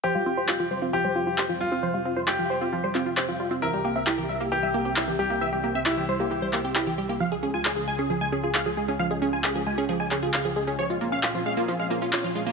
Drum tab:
CP |--x---x-|--x--xx-|--x---x-|--x--xx-|

CP |--x---x-|--x--xx-|--x---x-|